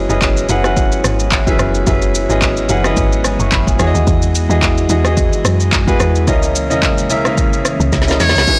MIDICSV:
0, 0, Header, 1, 6, 480
1, 0, Start_track
1, 0, Tempo, 550459
1, 1631, Time_signature, 4, 2, 24, 8
1, 7494, End_track
2, 0, Start_track
2, 0, Title_t, "Muted trumpet"
2, 0, Program_c, 0, 59
2, 7160, Note_on_c, 0, 73, 126
2, 7494, Note_off_c, 0, 73, 0
2, 7494, End_track
3, 0, Start_track
3, 0, Title_t, "Grand piano"
3, 0, Program_c, 1, 0
3, 0, Control_c, 1, 64, 127
3, 0, Note_on_c, 1, 54, 90
3, 0, Note_on_c, 1, 61, 89
3, 0, Note_on_c, 1, 64, 87
3, 0, Note_on_c, 1, 68, 90
3, 0, Note_on_c, 1, 71, 89
3, 0, Note_on_c, 1, 75, 108
3, 79, Note_off_c, 1, 54, 0
3, 79, Note_on_c, 1, 54, 91
3, 81, Note_off_c, 1, 61, 0
3, 81, Note_on_c, 1, 61, 86
3, 83, Note_off_c, 1, 64, 0
3, 83, Note_on_c, 1, 64, 85
3, 86, Note_off_c, 1, 68, 0
3, 86, Note_on_c, 1, 68, 82
3, 87, Note_off_c, 1, 71, 0
3, 87, Note_on_c, 1, 71, 85
3, 90, Note_off_c, 1, 75, 0
3, 90, Note_on_c, 1, 75, 100
3, 364, Note_off_c, 1, 54, 0
3, 365, Note_off_c, 1, 61, 0
3, 366, Note_off_c, 1, 64, 0
3, 368, Note_off_c, 1, 68, 0
3, 368, Note_off_c, 1, 71, 0
3, 370, Note_off_c, 1, 75, 0
3, 428, Note_on_c, 1, 54, 91
3, 430, Note_on_c, 1, 61, 83
3, 432, Note_on_c, 1, 64, 85
3, 435, Note_on_c, 1, 68, 88
3, 437, Note_on_c, 1, 71, 85
3, 439, Note_on_c, 1, 78, 109
3, 535, Note_off_c, 1, 54, 0
3, 536, Note_off_c, 1, 61, 0
3, 537, Note_off_c, 1, 64, 0
3, 538, Note_off_c, 1, 68, 0
3, 540, Note_off_c, 1, 71, 0
3, 541, Note_off_c, 1, 78, 0
3, 558, Note_on_c, 1, 54, 99
3, 560, Note_on_c, 1, 61, 86
3, 563, Note_on_c, 1, 64, 89
3, 565, Note_on_c, 1, 68, 89
3, 566, Note_on_c, 1, 71, 86
3, 569, Note_on_c, 1, 78, 103
3, 1127, Note_off_c, 1, 54, 0
3, 1128, Note_off_c, 1, 61, 0
3, 1129, Note_off_c, 1, 64, 0
3, 1130, Note_off_c, 1, 68, 0
3, 1131, Note_off_c, 1, 71, 0
3, 1132, Note_off_c, 1, 78, 0
3, 1278, Note_on_c, 1, 54, 91
3, 1281, Note_on_c, 1, 61, 86
3, 1283, Note_on_c, 1, 64, 87
3, 1285, Note_on_c, 1, 68, 86
3, 1287, Note_on_c, 1, 71, 82
3, 1290, Note_on_c, 1, 76, 106
3, 1564, Note_off_c, 1, 54, 0
3, 1565, Note_off_c, 1, 61, 0
3, 1566, Note_off_c, 1, 64, 0
3, 1567, Note_off_c, 1, 68, 0
3, 1568, Note_off_c, 1, 71, 0
3, 1569, Note_off_c, 1, 76, 0
3, 1627, Note_on_c, 1, 54, 93
3, 1628, Note_on_c, 1, 61, 90
3, 1631, Note_on_c, 1, 64, 87
3, 1633, Note_on_c, 1, 68, 84
3, 1635, Note_on_c, 1, 71, 88
3, 1638, Note_on_c, 1, 76, 103
3, 1922, Note_off_c, 1, 54, 0
3, 1922, Note_off_c, 1, 61, 0
3, 1924, Note_off_c, 1, 64, 0
3, 1925, Note_off_c, 1, 68, 0
3, 1926, Note_off_c, 1, 71, 0
3, 1927, Note_off_c, 1, 76, 0
3, 2001, Note_on_c, 1, 54, 90
3, 2003, Note_on_c, 1, 61, 89
3, 2005, Note_on_c, 1, 64, 86
3, 2008, Note_on_c, 1, 68, 90
3, 2010, Note_on_c, 1, 71, 88
3, 2011, Note_on_c, 1, 75, 106
3, 2285, Note_off_c, 1, 54, 0
3, 2286, Note_off_c, 1, 61, 0
3, 2287, Note_off_c, 1, 64, 0
3, 2289, Note_off_c, 1, 68, 0
3, 2290, Note_off_c, 1, 71, 0
3, 2290, Note_off_c, 1, 75, 0
3, 2345, Note_on_c, 1, 54, 94
3, 2348, Note_on_c, 1, 61, 88
3, 2350, Note_on_c, 1, 64, 84
3, 2353, Note_on_c, 1, 68, 87
3, 2354, Note_on_c, 1, 71, 87
3, 2357, Note_on_c, 1, 78, 107
3, 2454, Note_off_c, 1, 54, 0
3, 2455, Note_off_c, 1, 61, 0
3, 2456, Note_off_c, 1, 64, 0
3, 2457, Note_off_c, 1, 68, 0
3, 2458, Note_off_c, 1, 71, 0
3, 2460, Note_off_c, 1, 78, 0
3, 2477, Note_on_c, 1, 54, 98
3, 2479, Note_on_c, 1, 61, 92
3, 2481, Note_on_c, 1, 64, 89
3, 2483, Note_on_c, 1, 68, 90
3, 2486, Note_on_c, 1, 71, 93
3, 2488, Note_on_c, 1, 75, 105
3, 2831, Note_on_c, 1, 80, 71
3, 2956, Note_off_c, 1, 80, 0
3, 2962, Note_on_c, 1, 85, 78
3, 3046, Note_off_c, 1, 54, 0
3, 3047, Note_off_c, 1, 61, 0
3, 3048, Note_off_c, 1, 64, 0
3, 3049, Note_off_c, 1, 68, 0
3, 3051, Note_off_c, 1, 71, 0
3, 3052, Note_off_c, 1, 75, 0
3, 3065, Note_off_c, 1, 85, 0
3, 3069, Note_on_c, 1, 83, 76
3, 3195, Note_off_c, 1, 83, 0
3, 3203, Note_on_c, 1, 80, 66
3, 3306, Note_on_c, 1, 52, 97
3, 3309, Note_on_c, 1, 64, 86
3, 3312, Note_on_c, 1, 66, 88
3, 3315, Note_on_c, 1, 68, 89
3, 3317, Note_on_c, 1, 73, 85
3, 3322, Control_c, 1, 64, 0
3, 3375, Note_on_c, 1, 75, 107
3, 3376, Note_off_c, 1, 73, 0
3, 3431, Note_off_c, 1, 80, 0
3, 3477, Control_c, 1, 64, 127
3, 3788, Note_off_c, 1, 52, 0
3, 3790, Note_off_c, 1, 64, 0
3, 3791, Note_off_c, 1, 66, 0
3, 3793, Note_off_c, 1, 68, 0
3, 3823, Note_off_c, 1, 75, 0
3, 3918, Note_on_c, 1, 52, 96
3, 3922, Note_on_c, 1, 64, 87
3, 3924, Note_on_c, 1, 66, 82
3, 3926, Note_on_c, 1, 68, 87
3, 3929, Note_on_c, 1, 75, 102
3, 4204, Note_off_c, 1, 52, 0
3, 4205, Note_off_c, 1, 64, 0
3, 4207, Note_off_c, 1, 66, 0
3, 4208, Note_off_c, 1, 68, 0
3, 4209, Note_off_c, 1, 75, 0
3, 4268, Note_on_c, 1, 52, 96
3, 4269, Note_on_c, 1, 64, 90
3, 4272, Note_on_c, 1, 66, 89
3, 4274, Note_on_c, 1, 68, 89
3, 4279, Note_on_c, 1, 75, 105
3, 4375, Note_off_c, 1, 52, 0
3, 4376, Note_off_c, 1, 64, 0
3, 4377, Note_off_c, 1, 66, 0
3, 4378, Note_off_c, 1, 68, 0
3, 4380, Note_off_c, 1, 75, 0
3, 4397, Note_on_c, 1, 52, 97
3, 4401, Note_on_c, 1, 64, 86
3, 4403, Note_on_c, 1, 66, 87
3, 4405, Note_on_c, 1, 68, 91
3, 4409, Note_on_c, 1, 75, 108
3, 4967, Note_off_c, 1, 52, 0
3, 4968, Note_off_c, 1, 64, 0
3, 4969, Note_off_c, 1, 66, 0
3, 4970, Note_off_c, 1, 68, 0
3, 4972, Note_off_c, 1, 75, 0
3, 5117, Note_on_c, 1, 52, 91
3, 5120, Note_on_c, 1, 64, 84
3, 5122, Note_on_c, 1, 66, 85
3, 5125, Note_on_c, 1, 68, 87
3, 5128, Note_on_c, 1, 71, 106
3, 5403, Note_off_c, 1, 52, 0
3, 5405, Note_off_c, 1, 64, 0
3, 5406, Note_off_c, 1, 66, 0
3, 5407, Note_off_c, 1, 68, 0
3, 5408, Note_off_c, 1, 71, 0
3, 5469, Note_on_c, 1, 49, 92
3, 5472, Note_on_c, 1, 61, 90
3, 5474, Note_on_c, 1, 64, 85
3, 5476, Note_on_c, 1, 70, 85
3, 5480, Note_on_c, 1, 75, 104
3, 5483, Control_c, 1, 64, 0
3, 5653, Control_c, 1, 64, 127
3, 5763, Note_off_c, 1, 49, 0
3, 5764, Note_off_c, 1, 61, 0
3, 5765, Note_off_c, 1, 64, 0
3, 5766, Note_off_c, 1, 70, 0
3, 5768, Note_off_c, 1, 75, 0
3, 5842, Note_on_c, 1, 49, 93
3, 5844, Note_on_c, 1, 61, 87
3, 5847, Note_on_c, 1, 64, 83
3, 5849, Note_on_c, 1, 70, 81
3, 5853, Note_on_c, 1, 75, 106
3, 6126, Note_off_c, 1, 49, 0
3, 6126, Note_off_c, 1, 61, 0
3, 6128, Note_off_c, 1, 64, 0
3, 6129, Note_off_c, 1, 70, 0
3, 6131, Note_off_c, 1, 75, 0
3, 6189, Note_on_c, 1, 49, 93
3, 6192, Note_on_c, 1, 61, 83
3, 6195, Note_on_c, 1, 64, 90
3, 6197, Note_on_c, 1, 70, 88
3, 6199, Note_on_c, 1, 76, 105
3, 6295, Note_off_c, 1, 49, 0
3, 6297, Note_off_c, 1, 61, 0
3, 6298, Note_off_c, 1, 64, 0
3, 6300, Note_off_c, 1, 70, 0
3, 6301, Note_off_c, 1, 76, 0
3, 6319, Note_on_c, 1, 49, 97
3, 6322, Note_on_c, 1, 61, 92
3, 6325, Note_on_c, 1, 64, 88
3, 6328, Note_on_c, 1, 70, 89
3, 6331, Note_on_c, 1, 76, 105
3, 6887, Note_off_c, 1, 49, 0
3, 6889, Note_off_c, 1, 61, 0
3, 6890, Note_off_c, 1, 64, 0
3, 6892, Note_off_c, 1, 70, 0
3, 6893, Note_off_c, 1, 76, 0
3, 7039, Note_on_c, 1, 49, 90
3, 7041, Note_on_c, 1, 61, 79
3, 7044, Note_on_c, 1, 64, 80
3, 7047, Note_on_c, 1, 70, 82
3, 7050, Note_on_c, 1, 75, 96
3, 7324, Note_off_c, 1, 49, 0
3, 7325, Note_off_c, 1, 61, 0
3, 7327, Note_off_c, 1, 64, 0
3, 7328, Note_off_c, 1, 70, 0
3, 7330, Note_off_c, 1, 75, 0
3, 7387, Note_on_c, 1, 54, 77
3, 7388, Note_on_c, 1, 61, 69
3, 7391, Note_on_c, 1, 63, 70
3, 7392, Note_on_c, 1, 64, 69
3, 7394, Note_on_c, 1, 68, 73
3, 7397, Note_on_c, 1, 71, 80
3, 7401, Control_c, 1, 64, 0
3, 7494, Note_off_c, 1, 54, 0
3, 7494, Note_off_c, 1, 61, 0
3, 7494, Note_off_c, 1, 63, 0
3, 7494, Note_off_c, 1, 64, 0
3, 7494, Note_off_c, 1, 68, 0
3, 7494, Note_off_c, 1, 71, 0
3, 7494, End_track
4, 0, Start_track
4, 0, Title_t, "String machine"
4, 0, Program_c, 2, 50
4, 0, Note_on_c, 2, 52, 85
4, 0, Note_on_c, 2, 56, 77
4, 0, Note_on_c, 2, 59, 78
4, 0, Note_on_c, 2, 64, 78
4, 0, Note_on_c, 2, 66, 92
4, 1612, Note_off_c, 2, 64, 0
4, 1628, Note_on_c, 2, 64, 80
4, 3277, Note_off_c, 2, 56, 0
4, 3293, Note_off_c, 2, 64, 0
4, 3310, Note_on_c, 2, 75, 78
4, 3311, Note_on_c, 2, 56, 78
4, 5436, Note_off_c, 2, 66, 0
4, 5437, Note_off_c, 2, 52, 0
4, 5437, Note_off_c, 2, 59, 0
4, 5449, Note_off_c, 2, 75, 0
4, 5475, Note_on_c, 2, 52, 86
4, 5475, Note_on_c, 2, 64, 95
4, 5476, Note_on_c, 2, 58, 77
4, 5476, Note_on_c, 2, 61, 76
4, 7356, Note_off_c, 2, 56, 0
4, 7374, Note_off_c, 2, 52, 0
4, 7374, Note_off_c, 2, 58, 0
4, 7374, Note_off_c, 2, 61, 0
4, 7374, Note_off_c, 2, 64, 0
4, 7392, Note_on_c, 2, 56, 80
4, 7392, Note_on_c, 2, 66, 87
4, 7393, Note_on_c, 2, 52, 84
4, 7393, Note_on_c, 2, 59, 75
4, 7494, Note_off_c, 2, 52, 0
4, 7494, Note_off_c, 2, 56, 0
4, 7494, Note_off_c, 2, 59, 0
4, 7494, Note_off_c, 2, 66, 0
4, 7494, End_track
5, 0, Start_track
5, 0, Title_t, "Log drum bass"
5, 0, Program_c, 3, 39
5, 83, Note_on_c, 3, 30, 94
5, 414, Note_off_c, 3, 30, 0
5, 430, Note_on_c, 3, 30, 105
5, 785, Note_off_c, 3, 30, 0
5, 911, Note_on_c, 3, 32, 102
5, 1368, Note_off_c, 3, 32, 0
5, 1389, Note_on_c, 3, 30, 95
5, 1618, Note_off_c, 3, 30, 0
5, 1630, Note_on_c, 3, 30, 105
5, 1984, Note_off_c, 3, 30, 0
5, 2002, Note_on_c, 3, 32, 92
5, 2334, Note_off_c, 3, 32, 0
5, 2350, Note_on_c, 3, 30, 104
5, 2579, Note_off_c, 3, 30, 0
5, 2589, Note_on_c, 3, 32, 107
5, 2944, Note_off_c, 3, 32, 0
5, 2962, Note_on_c, 3, 30, 98
5, 3065, Note_off_c, 3, 30, 0
5, 3069, Note_on_c, 3, 30, 98
5, 3298, Note_off_c, 3, 30, 0
5, 3309, Note_on_c, 3, 40, 104
5, 3436, Note_off_c, 3, 40, 0
5, 3442, Note_on_c, 3, 39, 88
5, 3545, Note_off_c, 3, 39, 0
5, 3550, Note_on_c, 3, 40, 103
5, 3905, Note_off_c, 3, 40, 0
5, 3920, Note_on_c, 3, 40, 110
5, 4252, Note_off_c, 3, 40, 0
5, 4269, Note_on_c, 3, 40, 105
5, 4624, Note_off_c, 3, 40, 0
5, 4750, Note_on_c, 3, 42, 95
5, 5207, Note_off_c, 3, 42, 0
5, 5231, Note_on_c, 3, 40, 92
5, 5472, Note_on_c, 3, 37, 107
5, 5485, Note_off_c, 3, 40, 0
5, 5843, Note_on_c, 3, 40, 96
5, 5856, Note_off_c, 3, 37, 0
5, 6190, Note_on_c, 3, 37, 103
5, 6203, Note_off_c, 3, 40, 0
5, 6432, Note_on_c, 3, 40, 108
5, 6445, Note_off_c, 3, 37, 0
5, 6785, Note_off_c, 3, 40, 0
5, 6801, Note_on_c, 3, 37, 105
5, 6905, Note_off_c, 3, 37, 0
5, 6910, Note_on_c, 3, 37, 96
5, 7139, Note_off_c, 3, 37, 0
5, 7150, Note_on_c, 3, 40, 106
5, 7276, Note_off_c, 3, 40, 0
5, 7282, Note_on_c, 3, 37, 92
5, 7385, Note_off_c, 3, 37, 0
5, 7494, End_track
6, 0, Start_track
6, 0, Title_t, "Drums"
6, 85, Note_on_c, 9, 82, 54
6, 172, Note_off_c, 9, 82, 0
6, 189, Note_on_c, 9, 36, 99
6, 191, Note_on_c, 9, 82, 73
6, 193, Note_on_c, 9, 39, 96
6, 276, Note_off_c, 9, 36, 0
6, 279, Note_off_c, 9, 82, 0
6, 281, Note_off_c, 9, 39, 0
6, 322, Note_on_c, 9, 82, 57
6, 409, Note_off_c, 9, 82, 0
6, 427, Note_on_c, 9, 82, 86
6, 514, Note_off_c, 9, 82, 0
6, 559, Note_on_c, 9, 37, 94
6, 565, Note_on_c, 9, 82, 58
6, 647, Note_off_c, 9, 37, 0
6, 652, Note_off_c, 9, 82, 0
6, 669, Note_on_c, 9, 36, 125
6, 669, Note_on_c, 9, 82, 81
6, 756, Note_off_c, 9, 82, 0
6, 757, Note_off_c, 9, 36, 0
6, 803, Note_on_c, 9, 82, 52
6, 890, Note_off_c, 9, 82, 0
6, 909, Note_on_c, 9, 37, 103
6, 911, Note_on_c, 9, 82, 98
6, 997, Note_off_c, 9, 37, 0
6, 998, Note_off_c, 9, 82, 0
6, 1042, Note_on_c, 9, 82, 59
6, 1129, Note_off_c, 9, 82, 0
6, 1147, Note_on_c, 9, 82, 74
6, 1150, Note_on_c, 9, 36, 92
6, 1150, Note_on_c, 9, 39, 94
6, 1234, Note_off_c, 9, 82, 0
6, 1237, Note_off_c, 9, 36, 0
6, 1237, Note_off_c, 9, 39, 0
6, 1282, Note_on_c, 9, 36, 99
6, 1284, Note_on_c, 9, 82, 61
6, 1369, Note_off_c, 9, 36, 0
6, 1371, Note_off_c, 9, 82, 0
6, 1388, Note_on_c, 9, 82, 81
6, 1389, Note_on_c, 9, 37, 101
6, 1475, Note_off_c, 9, 82, 0
6, 1476, Note_off_c, 9, 37, 0
6, 1523, Note_on_c, 9, 82, 50
6, 1610, Note_off_c, 9, 82, 0
6, 1629, Note_on_c, 9, 82, 83
6, 1630, Note_on_c, 9, 36, 120
6, 1717, Note_off_c, 9, 36, 0
6, 1717, Note_off_c, 9, 82, 0
6, 1761, Note_on_c, 9, 82, 64
6, 1848, Note_off_c, 9, 82, 0
6, 1873, Note_on_c, 9, 82, 114
6, 1960, Note_off_c, 9, 82, 0
6, 2004, Note_on_c, 9, 82, 54
6, 2092, Note_off_c, 9, 82, 0
6, 2108, Note_on_c, 9, 36, 99
6, 2110, Note_on_c, 9, 82, 74
6, 2112, Note_on_c, 9, 39, 100
6, 2195, Note_off_c, 9, 36, 0
6, 2197, Note_off_c, 9, 82, 0
6, 2199, Note_off_c, 9, 39, 0
6, 2240, Note_on_c, 9, 82, 58
6, 2327, Note_off_c, 9, 82, 0
6, 2346, Note_on_c, 9, 82, 84
6, 2434, Note_off_c, 9, 82, 0
6, 2479, Note_on_c, 9, 37, 100
6, 2485, Note_on_c, 9, 82, 58
6, 2566, Note_off_c, 9, 37, 0
6, 2572, Note_off_c, 9, 82, 0
6, 2588, Note_on_c, 9, 82, 87
6, 2589, Note_on_c, 9, 36, 127
6, 2675, Note_off_c, 9, 82, 0
6, 2676, Note_off_c, 9, 36, 0
6, 2724, Note_on_c, 9, 82, 52
6, 2812, Note_off_c, 9, 82, 0
6, 2829, Note_on_c, 9, 37, 95
6, 2830, Note_on_c, 9, 82, 95
6, 2916, Note_off_c, 9, 37, 0
6, 2918, Note_off_c, 9, 82, 0
6, 2962, Note_on_c, 9, 82, 55
6, 3050, Note_off_c, 9, 82, 0
6, 3068, Note_on_c, 9, 82, 75
6, 3070, Note_on_c, 9, 36, 93
6, 3071, Note_on_c, 9, 39, 96
6, 3155, Note_off_c, 9, 82, 0
6, 3157, Note_off_c, 9, 36, 0
6, 3158, Note_off_c, 9, 39, 0
6, 3202, Note_on_c, 9, 36, 99
6, 3206, Note_on_c, 9, 82, 64
6, 3290, Note_off_c, 9, 36, 0
6, 3293, Note_off_c, 9, 82, 0
6, 3308, Note_on_c, 9, 82, 85
6, 3309, Note_on_c, 9, 37, 105
6, 3395, Note_off_c, 9, 82, 0
6, 3396, Note_off_c, 9, 37, 0
6, 3444, Note_on_c, 9, 82, 51
6, 3531, Note_off_c, 9, 82, 0
6, 3550, Note_on_c, 9, 36, 124
6, 3551, Note_on_c, 9, 82, 80
6, 3638, Note_off_c, 9, 36, 0
6, 3638, Note_off_c, 9, 82, 0
6, 3681, Note_on_c, 9, 82, 66
6, 3768, Note_off_c, 9, 82, 0
6, 3794, Note_on_c, 9, 82, 112
6, 3881, Note_off_c, 9, 82, 0
6, 3927, Note_on_c, 9, 82, 56
6, 4015, Note_off_c, 9, 82, 0
6, 4029, Note_on_c, 9, 36, 100
6, 4033, Note_on_c, 9, 82, 72
6, 4035, Note_on_c, 9, 39, 102
6, 4116, Note_off_c, 9, 36, 0
6, 4120, Note_off_c, 9, 82, 0
6, 4122, Note_off_c, 9, 39, 0
6, 4164, Note_on_c, 9, 82, 57
6, 4251, Note_off_c, 9, 82, 0
6, 4267, Note_on_c, 9, 82, 91
6, 4355, Note_off_c, 9, 82, 0
6, 4400, Note_on_c, 9, 37, 96
6, 4406, Note_on_c, 9, 82, 57
6, 4487, Note_off_c, 9, 37, 0
6, 4493, Note_off_c, 9, 82, 0
6, 4510, Note_on_c, 9, 36, 122
6, 4510, Note_on_c, 9, 82, 88
6, 4597, Note_off_c, 9, 36, 0
6, 4598, Note_off_c, 9, 82, 0
6, 4646, Note_on_c, 9, 82, 51
6, 4733, Note_off_c, 9, 82, 0
6, 4751, Note_on_c, 9, 37, 101
6, 4752, Note_on_c, 9, 82, 98
6, 4838, Note_off_c, 9, 37, 0
6, 4840, Note_off_c, 9, 82, 0
6, 4884, Note_on_c, 9, 82, 56
6, 4972, Note_off_c, 9, 82, 0
6, 4991, Note_on_c, 9, 36, 94
6, 4991, Note_on_c, 9, 82, 71
6, 4994, Note_on_c, 9, 39, 97
6, 5078, Note_off_c, 9, 36, 0
6, 5078, Note_off_c, 9, 82, 0
6, 5081, Note_off_c, 9, 39, 0
6, 5124, Note_on_c, 9, 36, 102
6, 5127, Note_on_c, 9, 82, 61
6, 5211, Note_off_c, 9, 36, 0
6, 5214, Note_off_c, 9, 82, 0
6, 5231, Note_on_c, 9, 82, 80
6, 5233, Note_on_c, 9, 37, 104
6, 5318, Note_off_c, 9, 82, 0
6, 5320, Note_off_c, 9, 37, 0
6, 5366, Note_on_c, 9, 82, 50
6, 5454, Note_off_c, 9, 82, 0
6, 5472, Note_on_c, 9, 36, 125
6, 5473, Note_on_c, 9, 82, 78
6, 5559, Note_off_c, 9, 36, 0
6, 5560, Note_off_c, 9, 82, 0
6, 5604, Note_on_c, 9, 82, 65
6, 5691, Note_off_c, 9, 82, 0
6, 5716, Note_on_c, 9, 82, 116
6, 5803, Note_off_c, 9, 82, 0
6, 5850, Note_on_c, 9, 82, 58
6, 5937, Note_off_c, 9, 82, 0
6, 5951, Note_on_c, 9, 36, 97
6, 5955, Note_on_c, 9, 82, 73
6, 5957, Note_on_c, 9, 39, 98
6, 6038, Note_off_c, 9, 36, 0
6, 6043, Note_off_c, 9, 82, 0
6, 6045, Note_off_c, 9, 39, 0
6, 6086, Note_on_c, 9, 82, 58
6, 6173, Note_off_c, 9, 82, 0
6, 6190, Note_on_c, 9, 82, 89
6, 6277, Note_off_c, 9, 82, 0
6, 6323, Note_on_c, 9, 37, 100
6, 6329, Note_on_c, 9, 82, 58
6, 6410, Note_off_c, 9, 37, 0
6, 6416, Note_off_c, 9, 82, 0
6, 6431, Note_on_c, 9, 36, 124
6, 6432, Note_on_c, 9, 82, 86
6, 6519, Note_off_c, 9, 36, 0
6, 6519, Note_off_c, 9, 82, 0
6, 6567, Note_on_c, 9, 82, 51
6, 6654, Note_off_c, 9, 82, 0
6, 6672, Note_on_c, 9, 37, 95
6, 6673, Note_on_c, 9, 82, 94
6, 6759, Note_off_c, 9, 37, 0
6, 6760, Note_off_c, 9, 82, 0
6, 6805, Note_on_c, 9, 82, 56
6, 6892, Note_off_c, 9, 82, 0
6, 6910, Note_on_c, 9, 82, 70
6, 6911, Note_on_c, 9, 36, 90
6, 6912, Note_on_c, 9, 38, 58
6, 6991, Note_off_c, 9, 38, 0
6, 6991, Note_on_c, 9, 38, 64
6, 6998, Note_off_c, 9, 36, 0
6, 6998, Note_off_c, 9, 82, 0
6, 7046, Note_on_c, 9, 82, 61
6, 7071, Note_off_c, 9, 38, 0
6, 7071, Note_on_c, 9, 38, 89
6, 7133, Note_off_c, 9, 82, 0
6, 7149, Note_on_c, 9, 46, 69
6, 7149, Note_on_c, 9, 82, 87
6, 7150, Note_off_c, 9, 38, 0
6, 7150, Note_on_c, 9, 38, 77
6, 7232, Note_off_c, 9, 38, 0
6, 7232, Note_on_c, 9, 38, 103
6, 7237, Note_off_c, 9, 46, 0
6, 7237, Note_off_c, 9, 82, 0
6, 7284, Note_on_c, 9, 82, 49
6, 7309, Note_off_c, 9, 38, 0
6, 7309, Note_on_c, 9, 38, 100
6, 7371, Note_off_c, 9, 82, 0
6, 7389, Note_on_c, 9, 82, 78
6, 7390, Note_on_c, 9, 36, 114
6, 7396, Note_off_c, 9, 38, 0
6, 7476, Note_off_c, 9, 82, 0
6, 7478, Note_off_c, 9, 36, 0
6, 7494, End_track
0, 0, End_of_file